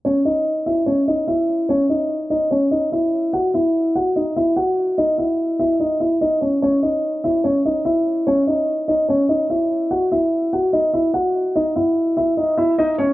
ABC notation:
X:1
M:4/4
L:1/8
Q:1/4=146
K:C#m
V:1 name="Grand piano"
[Cc] [Dd]2 [Ee] [Cc] [Dd] [Ee]2 | [Cc] D2 [Dd] [Cc] [Dd] [Ee]2 | [Ff] [Ee]2 [Ff] [Dd] [Ee] [Ff]2 | [Dd] [Ee]2 [Ee] [Dd] [Ee] [Dd] [Cc] |
[Cc] [Dd]2 [Ee] [Cc] [Dd] [Ee]2 | [Cc] [Dd]2 [Dd] [Cc] [Dd] [Ee]2 | [Ff] [Ee]2 [Ff] [Dd] [Ee] [Ff]2 | [Dd] [Ee]2 [Ee] [Dd] [Ee] [Dd] [Cc] |]